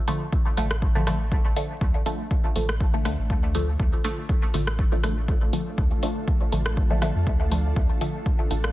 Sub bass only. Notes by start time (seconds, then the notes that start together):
0.57 A1
1.81 D2
2.56 A1
3.05 D2
3.19 A1
3.30 D2
3.80 D2
4.54 A1
5.78 D2
6.52 A1
7.15 F2
7.27 D2
7.76 D2
8.51 A1